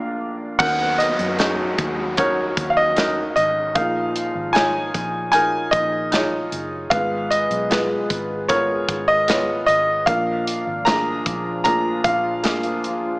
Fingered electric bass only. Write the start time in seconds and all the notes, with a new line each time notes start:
0.60 D#2
1.19 F#2
1.79 D#2
2.57 D#2
3.37 G#1
3.76 A#1
4.35 G#1
4.94 A#1
5.73 A#1
6.52 F#1
6.91 G#1
7.50 B1
8.10 G#1
8.89 G#1
9.68 G#1
10.07 A#1
10.67 G#1
11.26 A#1
12.05 A#1
12.84 G#1